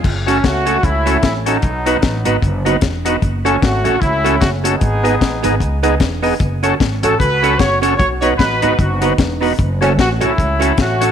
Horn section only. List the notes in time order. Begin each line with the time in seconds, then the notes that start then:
0.28 C#4
0.45 A3 C#4 F#4
0.84 A3 C#4 E4
1.25 E4
1.48 F#3 B3 D#4
3.46 C#4
3.62 A3 C#4 F#4
4.01 A3 C#4 E4
4.41 F#4
4.65 B3 D#4 G#4
7.03 A4
7.19 F#4 B4
7.58 C#5
7.81 C#5
7.97 F#4 C#5
8.21 C#5
8.38 D#4 F#4 B4
8.79 B3 D#4 F#4
9.82 C#4
10.00 F#4
10.23 A3 C#4 E4
10.80 A3 C#4 F#4